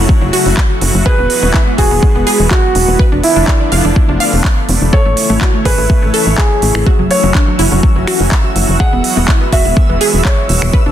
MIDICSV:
0, 0, Header, 1, 7, 480
1, 0, Start_track
1, 0, Tempo, 483871
1, 1050, Time_signature, 4, 2, 24, 8
1, 10831, End_track
2, 0, Start_track
2, 0, Title_t, "Synth texture"
2, 0, Program_c, 0, 99
2, 4892, Note_on_c, 0, 76, 89
2, 4893, Note_on_c, 0, 88, 91
2, 10831, Note_off_c, 0, 76, 0
2, 10831, Note_off_c, 0, 88, 0
2, 10831, End_track
3, 0, Start_track
3, 0, Title_t, "Grand piano"
3, 0, Program_c, 1, 0
3, 0, Note_on_c, 1, 73, 88
3, 239, Note_off_c, 1, 73, 0
3, 1049, Note_on_c, 1, 71, 102
3, 1679, Note_off_c, 1, 71, 0
3, 1771, Note_on_c, 1, 68, 88
3, 2399, Note_off_c, 1, 68, 0
3, 2491, Note_on_c, 1, 66, 90
3, 3120, Note_off_c, 1, 66, 0
3, 3212, Note_on_c, 1, 64, 91
3, 4080, Note_off_c, 1, 64, 0
3, 4891, Note_on_c, 1, 73, 97
3, 5520, Note_off_c, 1, 73, 0
3, 5611, Note_on_c, 1, 71, 93
3, 6240, Note_off_c, 1, 71, 0
3, 6331, Note_on_c, 1, 68, 88
3, 6959, Note_off_c, 1, 68, 0
3, 7051, Note_on_c, 1, 73, 94
3, 7920, Note_off_c, 1, 73, 0
3, 8729, Note_on_c, 1, 78, 99
3, 9359, Note_off_c, 1, 78, 0
3, 9451, Note_on_c, 1, 76, 94
3, 10080, Note_off_c, 1, 76, 0
3, 10171, Note_on_c, 1, 73, 87
3, 10800, Note_off_c, 1, 73, 0
3, 10831, End_track
4, 0, Start_track
4, 0, Title_t, "Synth pluck"
4, 0, Program_c, 2, 84
4, 89, Note_on_c, 2, 54, 64
4, 182, Note_off_c, 2, 54, 0
4, 215, Note_on_c, 2, 54, 62
4, 299, Note_off_c, 2, 54, 0
4, 329, Note_on_c, 2, 66, 93
4, 959, Note_off_c, 2, 66, 0
4, 1049, Note_on_c, 2, 68, 104
4, 1142, Note_off_c, 2, 68, 0
4, 1176, Note_on_c, 2, 59, 66
4, 1259, Note_off_c, 2, 59, 0
4, 1416, Note_on_c, 2, 59, 64
4, 1499, Note_off_c, 2, 59, 0
4, 1529, Note_on_c, 2, 64, 92
4, 1622, Note_off_c, 2, 64, 0
4, 1657, Note_on_c, 2, 59, 64
4, 1739, Note_off_c, 2, 59, 0
4, 1771, Note_on_c, 2, 66, 98
4, 1863, Note_off_c, 2, 66, 0
4, 1896, Note_on_c, 2, 59, 62
4, 1979, Note_off_c, 2, 59, 0
4, 2011, Note_on_c, 2, 59, 59
4, 2103, Note_off_c, 2, 59, 0
4, 2137, Note_on_c, 2, 59, 62
4, 2220, Note_off_c, 2, 59, 0
4, 2250, Note_on_c, 2, 68, 99
4, 2879, Note_off_c, 2, 68, 0
4, 2970, Note_on_c, 2, 71, 100
4, 3062, Note_off_c, 2, 71, 0
4, 3097, Note_on_c, 2, 62, 65
4, 3179, Note_off_c, 2, 62, 0
4, 3337, Note_on_c, 2, 62, 66
4, 3419, Note_off_c, 2, 62, 0
4, 3450, Note_on_c, 2, 74, 92
4, 3542, Note_off_c, 2, 74, 0
4, 3577, Note_on_c, 2, 62, 63
4, 3659, Note_off_c, 2, 62, 0
4, 3689, Note_on_c, 2, 77, 89
4, 3782, Note_off_c, 2, 77, 0
4, 3817, Note_on_c, 2, 62, 64
4, 3899, Note_off_c, 2, 62, 0
4, 3930, Note_on_c, 2, 62, 59
4, 4022, Note_off_c, 2, 62, 0
4, 4055, Note_on_c, 2, 62, 61
4, 4139, Note_off_c, 2, 62, 0
4, 4169, Note_on_c, 2, 77, 97
4, 4799, Note_off_c, 2, 77, 0
4, 4889, Note_on_c, 2, 69, 101
4, 4982, Note_off_c, 2, 69, 0
4, 5015, Note_on_c, 2, 57, 66
4, 5099, Note_off_c, 2, 57, 0
4, 5255, Note_on_c, 2, 57, 65
4, 5339, Note_off_c, 2, 57, 0
4, 5369, Note_on_c, 2, 66, 92
4, 5462, Note_off_c, 2, 66, 0
4, 5495, Note_on_c, 2, 57, 65
4, 5579, Note_off_c, 2, 57, 0
4, 5609, Note_on_c, 2, 68, 97
4, 5702, Note_off_c, 2, 68, 0
4, 5736, Note_on_c, 2, 57, 63
4, 5819, Note_off_c, 2, 57, 0
4, 5849, Note_on_c, 2, 57, 62
4, 5942, Note_off_c, 2, 57, 0
4, 5976, Note_on_c, 2, 57, 63
4, 6059, Note_off_c, 2, 57, 0
4, 6089, Note_on_c, 2, 69, 96
4, 6719, Note_off_c, 2, 69, 0
4, 6809, Note_on_c, 2, 66, 97
4, 6902, Note_off_c, 2, 66, 0
4, 6935, Note_on_c, 2, 54, 67
4, 7019, Note_off_c, 2, 54, 0
4, 7175, Note_on_c, 2, 54, 66
4, 7259, Note_off_c, 2, 54, 0
4, 7289, Note_on_c, 2, 62, 93
4, 7382, Note_off_c, 2, 62, 0
4, 7416, Note_on_c, 2, 54, 63
4, 7499, Note_off_c, 2, 54, 0
4, 7529, Note_on_c, 2, 64, 97
4, 7622, Note_off_c, 2, 64, 0
4, 7657, Note_on_c, 2, 54, 61
4, 7739, Note_off_c, 2, 54, 0
4, 7770, Note_on_c, 2, 54, 60
4, 7862, Note_off_c, 2, 54, 0
4, 7897, Note_on_c, 2, 54, 62
4, 7979, Note_off_c, 2, 54, 0
4, 8009, Note_on_c, 2, 66, 97
4, 8639, Note_off_c, 2, 66, 0
4, 8730, Note_on_c, 2, 68, 96
4, 8822, Note_off_c, 2, 68, 0
4, 8856, Note_on_c, 2, 59, 65
4, 8939, Note_off_c, 2, 59, 0
4, 9096, Note_on_c, 2, 59, 65
4, 9179, Note_off_c, 2, 59, 0
4, 9209, Note_on_c, 2, 64, 97
4, 9302, Note_off_c, 2, 64, 0
4, 9335, Note_on_c, 2, 59, 67
4, 9419, Note_off_c, 2, 59, 0
4, 9449, Note_on_c, 2, 66, 97
4, 9542, Note_off_c, 2, 66, 0
4, 9575, Note_on_c, 2, 59, 64
4, 9658, Note_off_c, 2, 59, 0
4, 9689, Note_on_c, 2, 59, 64
4, 9782, Note_off_c, 2, 59, 0
4, 9816, Note_on_c, 2, 59, 63
4, 9899, Note_off_c, 2, 59, 0
4, 9929, Note_on_c, 2, 68, 99
4, 10559, Note_off_c, 2, 68, 0
4, 10649, Note_on_c, 2, 71, 101
4, 10741, Note_off_c, 2, 71, 0
4, 10775, Note_on_c, 2, 62, 64
4, 10831, Note_off_c, 2, 62, 0
4, 10831, End_track
5, 0, Start_track
5, 0, Title_t, "Analog synth pad"
5, 0, Program_c, 3, 89
5, 0, Note_on_c, 3, 49, 86
5, 0, Note_on_c, 3, 54, 79
5, 0, Note_on_c, 3, 57, 77
5, 0, Note_on_c, 3, 64, 77
5, 0, Note_on_c, 3, 66, 96
5, 1011, Note_off_c, 3, 57, 0
5, 1011, Note_off_c, 3, 64, 0
5, 1030, Note_off_c, 3, 49, 0
5, 1050, Note_on_c, 3, 52, 85
5, 1050, Note_on_c, 3, 59, 76
5, 1051, Note_on_c, 3, 56, 81
5, 2931, Note_off_c, 3, 54, 0
5, 2931, Note_off_c, 3, 66, 0
5, 2951, Note_off_c, 3, 52, 0
5, 2951, Note_off_c, 3, 56, 0
5, 2969, Note_on_c, 3, 50, 84
5, 2969, Note_on_c, 3, 53, 83
5, 2969, Note_on_c, 3, 57, 78
5, 2969, Note_on_c, 3, 62, 94
5, 4852, Note_off_c, 3, 59, 0
5, 4870, Note_off_c, 3, 50, 0
5, 4870, Note_off_c, 3, 62, 0
5, 4871, Note_off_c, 3, 53, 0
5, 4890, Note_on_c, 3, 49, 87
5, 4890, Note_on_c, 3, 64, 80
5, 4891, Note_on_c, 3, 52, 79
5, 4891, Note_on_c, 3, 73, 99
5, 6791, Note_off_c, 3, 49, 0
5, 6791, Note_off_c, 3, 64, 0
5, 6791, Note_off_c, 3, 73, 0
5, 6810, Note_on_c, 3, 54, 76
5, 6810, Note_on_c, 3, 61, 80
5, 6810, Note_on_c, 3, 66, 93
5, 8690, Note_off_c, 3, 57, 0
5, 8711, Note_off_c, 3, 61, 0
5, 8729, Note_on_c, 3, 59, 78
5, 8730, Note_on_c, 3, 56, 78
5, 10611, Note_off_c, 3, 52, 0
5, 10612, Note_off_c, 3, 54, 0
5, 10612, Note_off_c, 3, 66, 0
5, 10630, Note_off_c, 3, 59, 0
5, 10631, Note_off_c, 3, 56, 0
5, 10649, Note_on_c, 3, 50, 86
5, 10649, Note_on_c, 3, 53, 81
5, 10649, Note_on_c, 3, 57, 78
5, 10649, Note_on_c, 3, 59, 76
5, 10831, Note_off_c, 3, 50, 0
5, 10831, Note_off_c, 3, 53, 0
5, 10831, Note_off_c, 3, 57, 0
5, 10831, Note_off_c, 3, 59, 0
5, 10831, End_track
6, 0, Start_track
6, 0, Title_t, "Analog synth bass"
6, 0, Program_c, 4, 38
6, 216, Note_on_c, 4, 30, 75
6, 310, Note_off_c, 4, 30, 0
6, 457, Note_on_c, 4, 30, 81
6, 550, Note_off_c, 4, 30, 0
6, 810, Note_on_c, 4, 30, 94
6, 914, Note_off_c, 4, 30, 0
6, 937, Note_on_c, 4, 30, 84
6, 1030, Note_off_c, 4, 30, 0
6, 1176, Note_on_c, 4, 28, 77
6, 1270, Note_off_c, 4, 28, 0
6, 1417, Note_on_c, 4, 28, 83
6, 1510, Note_off_c, 4, 28, 0
6, 1770, Note_on_c, 4, 28, 92
6, 1874, Note_off_c, 4, 28, 0
6, 1897, Note_on_c, 4, 28, 85
6, 1990, Note_off_c, 4, 28, 0
6, 2137, Note_on_c, 4, 28, 75
6, 2230, Note_off_c, 4, 28, 0
6, 2377, Note_on_c, 4, 28, 80
6, 2470, Note_off_c, 4, 28, 0
6, 2730, Note_on_c, 4, 28, 93
6, 2834, Note_off_c, 4, 28, 0
6, 2856, Note_on_c, 4, 28, 80
6, 2950, Note_off_c, 4, 28, 0
6, 3097, Note_on_c, 4, 29, 75
6, 3190, Note_off_c, 4, 29, 0
6, 3337, Note_on_c, 4, 29, 86
6, 3430, Note_off_c, 4, 29, 0
6, 3690, Note_on_c, 4, 29, 93
6, 3794, Note_off_c, 4, 29, 0
6, 3817, Note_on_c, 4, 29, 86
6, 3910, Note_off_c, 4, 29, 0
6, 4057, Note_on_c, 4, 29, 76
6, 4150, Note_off_c, 4, 29, 0
6, 4298, Note_on_c, 4, 29, 81
6, 4390, Note_off_c, 4, 29, 0
6, 4651, Note_on_c, 4, 29, 90
6, 4754, Note_off_c, 4, 29, 0
6, 4777, Note_on_c, 4, 29, 83
6, 4870, Note_off_c, 4, 29, 0
6, 5018, Note_on_c, 4, 33, 77
6, 5111, Note_off_c, 4, 33, 0
6, 5256, Note_on_c, 4, 33, 82
6, 5350, Note_off_c, 4, 33, 0
6, 5610, Note_on_c, 4, 33, 99
6, 5714, Note_off_c, 4, 33, 0
6, 5736, Note_on_c, 4, 33, 83
6, 5830, Note_off_c, 4, 33, 0
6, 5976, Note_on_c, 4, 33, 75
6, 6070, Note_off_c, 4, 33, 0
6, 6217, Note_on_c, 4, 33, 81
6, 6310, Note_off_c, 4, 33, 0
6, 6570, Note_on_c, 4, 33, 88
6, 6674, Note_off_c, 4, 33, 0
6, 6697, Note_on_c, 4, 33, 78
6, 6790, Note_off_c, 4, 33, 0
6, 6936, Note_on_c, 4, 30, 73
6, 7030, Note_off_c, 4, 30, 0
6, 7177, Note_on_c, 4, 30, 85
6, 7270, Note_off_c, 4, 30, 0
6, 7530, Note_on_c, 4, 30, 97
6, 7634, Note_off_c, 4, 30, 0
6, 7657, Note_on_c, 4, 30, 83
6, 7750, Note_off_c, 4, 30, 0
6, 7897, Note_on_c, 4, 30, 75
6, 7990, Note_off_c, 4, 30, 0
6, 8136, Note_on_c, 4, 30, 80
6, 8230, Note_off_c, 4, 30, 0
6, 8489, Note_on_c, 4, 30, 91
6, 8594, Note_off_c, 4, 30, 0
6, 8616, Note_on_c, 4, 30, 82
6, 8710, Note_off_c, 4, 30, 0
6, 8857, Note_on_c, 4, 28, 76
6, 8950, Note_off_c, 4, 28, 0
6, 9097, Note_on_c, 4, 28, 82
6, 9190, Note_off_c, 4, 28, 0
6, 9449, Note_on_c, 4, 28, 94
6, 9554, Note_off_c, 4, 28, 0
6, 9577, Note_on_c, 4, 28, 84
6, 9670, Note_off_c, 4, 28, 0
6, 9817, Note_on_c, 4, 28, 78
6, 9910, Note_off_c, 4, 28, 0
6, 10056, Note_on_c, 4, 28, 80
6, 10150, Note_off_c, 4, 28, 0
6, 10410, Note_on_c, 4, 28, 93
6, 10514, Note_off_c, 4, 28, 0
6, 10537, Note_on_c, 4, 28, 81
6, 10630, Note_off_c, 4, 28, 0
6, 10776, Note_on_c, 4, 29, 78
6, 10831, Note_off_c, 4, 29, 0
6, 10831, End_track
7, 0, Start_track
7, 0, Title_t, "Drums"
7, 90, Note_on_c, 9, 36, 111
7, 189, Note_off_c, 9, 36, 0
7, 329, Note_on_c, 9, 46, 98
7, 428, Note_off_c, 9, 46, 0
7, 456, Note_on_c, 9, 46, 59
7, 555, Note_off_c, 9, 46, 0
7, 569, Note_on_c, 9, 39, 119
7, 570, Note_on_c, 9, 36, 109
7, 668, Note_off_c, 9, 39, 0
7, 669, Note_off_c, 9, 36, 0
7, 808, Note_on_c, 9, 46, 101
7, 907, Note_off_c, 9, 46, 0
7, 1050, Note_on_c, 9, 36, 110
7, 1149, Note_off_c, 9, 36, 0
7, 1289, Note_on_c, 9, 46, 101
7, 1388, Note_off_c, 9, 46, 0
7, 1528, Note_on_c, 9, 39, 110
7, 1530, Note_on_c, 9, 36, 113
7, 1628, Note_off_c, 9, 39, 0
7, 1629, Note_off_c, 9, 36, 0
7, 1769, Note_on_c, 9, 46, 102
7, 1770, Note_on_c, 9, 36, 56
7, 1868, Note_off_c, 9, 46, 0
7, 1869, Note_off_c, 9, 36, 0
7, 2010, Note_on_c, 9, 36, 110
7, 2109, Note_off_c, 9, 36, 0
7, 2249, Note_on_c, 9, 46, 94
7, 2348, Note_off_c, 9, 46, 0
7, 2490, Note_on_c, 9, 36, 113
7, 2490, Note_on_c, 9, 39, 120
7, 2589, Note_off_c, 9, 36, 0
7, 2589, Note_off_c, 9, 39, 0
7, 2729, Note_on_c, 9, 46, 99
7, 2828, Note_off_c, 9, 46, 0
7, 2970, Note_on_c, 9, 36, 112
7, 3069, Note_off_c, 9, 36, 0
7, 3209, Note_on_c, 9, 46, 106
7, 3309, Note_off_c, 9, 46, 0
7, 3450, Note_on_c, 9, 36, 118
7, 3450, Note_on_c, 9, 39, 119
7, 3549, Note_off_c, 9, 36, 0
7, 3549, Note_off_c, 9, 39, 0
7, 3689, Note_on_c, 9, 46, 104
7, 3788, Note_off_c, 9, 46, 0
7, 3930, Note_on_c, 9, 36, 113
7, 4029, Note_off_c, 9, 36, 0
7, 4169, Note_on_c, 9, 46, 101
7, 4268, Note_off_c, 9, 46, 0
7, 4296, Note_on_c, 9, 46, 58
7, 4396, Note_off_c, 9, 46, 0
7, 4410, Note_on_c, 9, 36, 115
7, 4410, Note_on_c, 9, 39, 124
7, 4509, Note_off_c, 9, 36, 0
7, 4509, Note_off_c, 9, 39, 0
7, 4649, Note_on_c, 9, 46, 95
7, 4748, Note_off_c, 9, 46, 0
7, 4890, Note_on_c, 9, 36, 115
7, 4989, Note_off_c, 9, 36, 0
7, 5128, Note_on_c, 9, 46, 108
7, 5228, Note_off_c, 9, 46, 0
7, 5370, Note_on_c, 9, 36, 115
7, 5370, Note_on_c, 9, 39, 126
7, 5469, Note_off_c, 9, 36, 0
7, 5469, Note_off_c, 9, 39, 0
7, 5609, Note_on_c, 9, 46, 107
7, 5610, Note_on_c, 9, 36, 57
7, 5708, Note_off_c, 9, 46, 0
7, 5709, Note_off_c, 9, 36, 0
7, 5850, Note_on_c, 9, 36, 114
7, 5950, Note_off_c, 9, 36, 0
7, 6089, Note_on_c, 9, 46, 105
7, 6188, Note_off_c, 9, 46, 0
7, 6329, Note_on_c, 9, 39, 126
7, 6330, Note_on_c, 9, 36, 118
7, 6428, Note_off_c, 9, 39, 0
7, 6429, Note_off_c, 9, 36, 0
7, 6569, Note_on_c, 9, 46, 100
7, 6668, Note_off_c, 9, 46, 0
7, 6696, Note_on_c, 9, 26, 80
7, 6795, Note_off_c, 9, 26, 0
7, 6810, Note_on_c, 9, 36, 121
7, 6909, Note_off_c, 9, 36, 0
7, 7049, Note_on_c, 9, 46, 108
7, 7149, Note_off_c, 9, 46, 0
7, 7290, Note_on_c, 9, 36, 124
7, 7290, Note_on_c, 9, 39, 120
7, 7389, Note_off_c, 9, 36, 0
7, 7389, Note_off_c, 9, 39, 0
7, 7529, Note_on_c, 9, 46, 108
7, 7628, Note_off_c, 9, 46, 0
7, 7770, Note_on_c, 9, 36, 120
7, 7869, Note_off_c, 9, 36, 0
7, 8010, Note_on_c, 9, 26, 59
7, 8010, Note_on_c, 9, 46, 106
7, 8109, Note_off_c, 9, 26, 0
7, 8109, Note_off_c, 9, 46, 0
7, 8136, Note_on_c, 9, 46, 63
7, 8236, Note_off_c, 9, 46, 0
7, 8250, Note_on_c, 9, 36, 119
7, 8250, Note_on_c, 9, 39, 127
7, 8349, Note_off_c, 9, 36, 0
7, 8349, Note_off_c, 9, 39, 0
7, 8489, Note_on_c, 9, 46, 110
7, 8588, Note_off_c, 9, 46, 0
7, 8729, Note_on_c, 9, 36, 122
7, 8829, Note_off_c, 9, 36, 0
7, 8969, Note_on_c, 9, 46, 107
7, 9068, Note_off_c, 9, 46, 0
7, 9209, Note_on_c, 9, 36, 127
7, 9209, Note_on_c, 9, 39, 124
7, 9308, Note_off_c, 9, 36, 0
7, 9308, Note_off_c, 9, 39, 0
7, 9449, Note_on_c, 9, 36, 62
7, 9449, Note_on_c, 9, 46, 118
7, 9548, Note_off_c, 9, 36, 0
7, 9548, Note_off_c, 9, 46, 0
7, 9689, Note_on_c, 9, 36, 127
7, 9788, Note_off_c, 9, 36, 0
7, 9928, Note_on_c, 9, 46, 108
7, 10028, Note_off_c, 9, 46, 0
7, 10169, Note_on_c, 9, 36, 119
7, 10169, Note_on_c, 9, 39, 127
7, 10268, Note_off_c, 9, 36, 0
7, 10268, Note_off_c, 9, 39, 0
7, 10408, Note_on_c, 9, 46, 107
7, 10508, Note_off_c, 9, 46, 0
7, 10536, Note_on_c, 9, 26, 85
7, 10635, Note_off_c, 9, 26, 0
7, 10649, Note_on_c, 9, 36, 116
7, 10749, Note_off_c, 9, 36, 0
7, 10831, End_track
0, 0, End_of_file